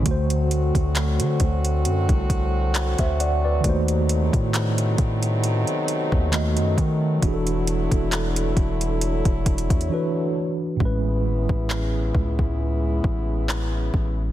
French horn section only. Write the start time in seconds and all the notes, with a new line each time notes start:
0.06 D3 F#3 A3 C4 F#4
3.64 C3 A3 B3 D#4
7.22 D3 B3 E4
9.01 C#5
10.80 C#3 G#3 B3 E4